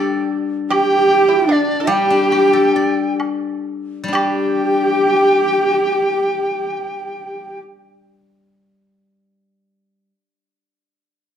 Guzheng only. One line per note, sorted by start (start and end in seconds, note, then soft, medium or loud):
0.00 1.47 G3 medium
0.00 0.90 D4 medium
0.00 1.09 G4 medium
0.00 1.28 A4 medium
0.00 1.48 D5 medium
1.87 4.02 G3 medium
2.10 3.90 D4 medium
2.32 4.12 G4 medium
2.53 4.39 A4 medium
2.76 4.64 D5 medium
4.04 10.10 G3 medium
4.08 8.84 D4 soft
4.13 8.13 G4 medium